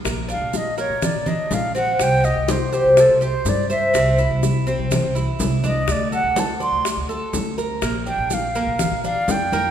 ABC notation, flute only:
X:1
M:4/4
L:1/8
Q:1/4=124
K:Bb
V:1 name="Flute"
z f e ^c d e f ^f | g e c G A c d =e- | =e2 z4 z _e | d ^f a c'2 z3 |
z g f3 f g2 |]